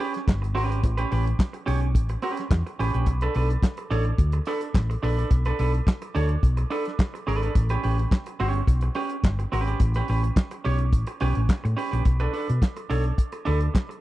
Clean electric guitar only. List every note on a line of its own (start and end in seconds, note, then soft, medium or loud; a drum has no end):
0.00 0.19 C#4 loud
0.00 0.14 G4 loud
0.00 0.13 B4 loud
0.14 muted clean electric guitar stroke medium
0.27 muted clean electric guitar stroke soft
0.42 muted clean electric guitar stroke soft
0.55 0.70 C#4 medium
0.55 0.69 G4 loud
0.55 0.69 B4 medium
0.70 0.81 C#4 medium
0.70 0.82 G4 medium
0.70 0.82 B4 medium
0.97 1.10 C#4 medium
0.97 1.10 G4 medium
0.97 1.11 B4 medium
1.11 1.27 C#4 medium
1.11 1.26 G4 medium
1.11 1.25 B4 medium
1.26 muted clean electric guitar stroke medium
1.53 muted clean electric guitar stroke soft
1.66 1.86 C#4 medium
1.66 1.81 G4 medium
1.66 1.81 C#5 medium
1.81 muted clean electric guitar stroke medium
2.10 muted clean electric guitar stroke soft
2.22 2.43 C#4 medium
2.22 2.37 G4 medium
2.22 2.37 B4 loud
2.38 muted clean electric guitar stroke soft
2.51 muted clean electric guitar stroke medium
2.66 muted clean electric guitar stroke soft
2.79 2.94 C#4 medium
2.79 2.93 G4 medium
2.79 2.92 B4 medium
2.94 3.07 C#4 medium
2.94 3.08 G4 medium
2.94 3.07 B4 medium
3.08 muted clean electric guitar stroke soft
3.22 3.34 D4 medium
3.22 3.34 A4 medium
3.22 3.35 B4 medium
3.35 3.51 D4 medium
3.35 3.50 A4 medium
3.35 3.49 B4 medium
3.50 muted clean electric guitar stroke soft
3.78 muted clean electric guitar stroke medium
3.90 4.10 D4 medium
3.90 4.05 A4 medium
3.90 4.05 C#5 loud
4.05 muted clean electric guitar stroke soft
4.33 muted clean electric guitar stroke medium
4.47 4.67 D4 medium
4.47 4.61 A4 medium
4.47 4.60 B4 medium
4.62 muted clean electric guitar stroke soft
4.75 muted clean electric guitar stroke medium
4.90 muted clean electric guitar stroke medium
5.03 5.17 D4 medium
5.03 5.17 A4 medium
5.03 5.16 B4 medium
5.18 5.30 D4 medium
5.18 5.30 A4 medium
5.18 5.31 B4 medium
5.31 muted clean electric guitar stroke soft
5.46 5.58 D4 medium
5.46 5.59 A4 medium
5.46 5.59 B4 medium
5.59 5.75 D4 medium
5.59 5.74 A4 medium
5.59 5.73 B4 medium
5.74 muted clean electric guitar stroke soft
6.02 muted clean electric guitar stroke soft
6.15 6.34 D4 medium
6.15 6.29 A4 loud
6.15 6.29 C#5 loud
6.30 muted clean electric guitar stroke soft
6.57 muted clean electric guitar stroke soft
6.70 6.90 D4 medium
6.70 6.86 A4 loud
6.70 6.85 B4 medium
6.86 muted clean electric guitar stroke soft
6.99 muted clean electric guitar stroke medium
7.14 muted clean electric guitar stroke medium
7.27 7.42 D4 medium
7.27 7.42 A4 medium
7.27 7.41 B4 loud
7.42 7.55 D4 medium
7.42 7.56 A4 medium
7.42 7.55 B4 medium
7.55 muted clean electric guitar stroke soft
7.70 7.82 C#4 medium
7.70 7.82 G4 medium
7.70 7.83 B4 medium
7.83 7.99 C#4 medium
7.83 7.98 G4 medium
7.83 7.97 B4 medium
7.98 muted clean electric guitar stroke soft
8.27 muted clean electric guitar stroke soft
8.40 8.60 C#4 loud
8.40 8.55 G4 loud
8.40 8.54 C#5 loud
8.55 muted clean electric guitar stroke medium
8.83 muted clean electric guitar stroke medium
8.95 9.15 C#4 medium
8.95 9.11 G4 medium
8.95 9.10 B4 medium
9.11 muted clean electric guitar stroke medium
9.24 muted clean electric guitar stroke medium
9.39 muted clean electric guitar stroke soft
9.52 9.67 C#4 medium
9.52 9.66 G4 medium
9.52 9.65 B4 loud
9.67 9.79 C#4 medium
9.67 9.80 G4 medium
9.67 9.80 B4 medium
9.96 10.07 C#4 medium
9.96 10.08 G4 medium
9.96 10.09 B4 medium
10.08 10.24 C#4 medium
10.08 10.23 G4 medium
10.08 10.22 B4 medium
10.23 muted clean electric guitar stroke soft
10.51 muted clean electric guitar stroke soft
10.64 10.84 C#4 medium
10.64 10.79 G4 medium
10.64 10.79 C#5 medium
10.80 muted clean electric guitar stroke soft
11.07 muted clean electric guitar stroke medium
11.21 11.41 C#4 loud
11.21 11.35 G4 medium
11.21 11.35 B4 loud
11.36 muted clean electric guitar stroke soft
11.49 muted clean electric guitar stroke medium
11.64 muted clean electric guitar stroke medium
11.77 11.91 C#4 medium
11.77 11.91 G4 medium
11.77 11.90 B4 medium
11.91 12.05 C#4 medium
11.91 12.05 G4 medium
11.91 12.05 B4 medium
12.05 muted clean electric guitar stroke soft
12.20 12.32 D4 medium
12.20 12.32 A4 medium
12.20 12.33 B4 medium
12.33 12.49 D4 medium
12.33 12.48 A4 medium
12.33 12.47 B4 medium
12.48 muted clean electric guitar stroke soft
12.77 muted clean electric guitar stroke soft
12.90 13.10 D4 medium
12.90 13.05 A4 medium
12.90 13.04 C#5 medium
13.05 muted clean electric guitar stroke soft
13.33 muted clean electric guitar stroke soft
13.45 13.66 D4 medium
13.45 13.60 A4 medium
13.45 13.59 B4 medium
13.60 muted clean electric guitar stroke soft
13.74 muted clean electric guitar stroke soft
13.89 muted clean electric guitar stroke soft